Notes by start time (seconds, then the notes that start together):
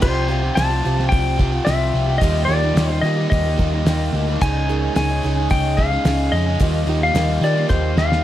0.01 C2 C3 F3 G3 C4 F4 G4 C5, kick, crash
0.28 F3 C4 F4 G4 C5
0.42 C4 F4 G4
0.55 C2 C3 F3 G3 C4 F4 G4 A5, snare, open hi-hat
0.69 C4 F4 G4
0.83 C2 F3 C4 F4 G4 C5
0.97 C4 F4 G4, snare
1.09 C2 G3 G5, kick, open hi-hat
1.13 C4 F4 G4
1.38 F3 C4 F4 G4, kick
1.52 C4 F4 G4
1.65 C2 C3 F3 G3 C4 E5, snare, open hi-hat
1.69 F4 G4
1.93 C2 F3 C4 F4 G4
2.08 C4 F4 G4
2.18 D#2 D#3 G3 F4 D#5, kick, open hi-hat
2.22 A#3 D#4 F4 G4 D#5
2.45 D#2 G3 D5
2.49 A#3 D#4 F4 G4
2.62 A#3 D#4 G4
2.75 D#2 D#3 G3 A#3 D#4 F4 G4, snare, open hi-hat
2.89 A#3 D#4 G4 C5
3.01 D#3 G3 A#3 D#4 F4 G4 D#5
3.06 G4
3.17 A#3 D#4 G4
3.30 D#2 G3 A#3 D#4 F4 D#5, kick, open hi-hat
3.58 D#2 G3 A#3 D#4 F4 G4, kick
3.72 A#3 D#4 G4
3.85 D#2 D#3 G3 A#3 D#4 F4 G4, snare, open hi-hat
4.13 D2 G3 A#3 D#4 G4
4.27 A#3 D#4 G4
4.41 C#2 C#3 G#3 C#4 D#4 G#4 C#5 G#5, kick, crash
4.68 G#3 C#4 D#4 G#4 A#4
4.81 C#4 D#4 G#4
4.94 C#2 C#3 G#3 C#4 D#4 G#4 G#5, snare, open hi-hat
5.08 C#4 D#4 G#4
5.23 C#2 G#3 C#4 D#4 G#4 C#5
5.36 C#4 D#4 G#4
5.50 C#2 G#3 C#4 D#4 G#4 G5, kick, open hi-hat
5.77 G#3 C#4 D#4 G#4 F5, kick
5.91 C#4 D#4 G#4
6.05 C#2 C#3 G#3 C#4 D#4 G#4, snare, open hi-hat
6.32 F2 G#3 C#4 D#4 G#4 D#5
6.46 C#4 D#4 G#4
6.60 D#2 D#3 G3 A#3 D#4 F4 G4 D#5, kick, open hi-hat
6.86 D#2 G3 A#3 D#4 F4 G4 D#5
6.90 G4
7.02 A#3 D#4 G4 F5
7.14 D#2 D#3 G3 A#3 D#4 F4 G4, snare, open hi-hat
7.28 A#3 D#4 G4
7.41 D#3 G3 A#3 D#4 F4 G4 D5 D#5
7.55 A#3 D#4 G4
7.69 D#2 G3 A#3 D#4 F4 C5, kick, snare
7.96 D#2 G3 A#3 D#4 F4 G4 F5, snare
8.11 A#3 D#4 G4, snare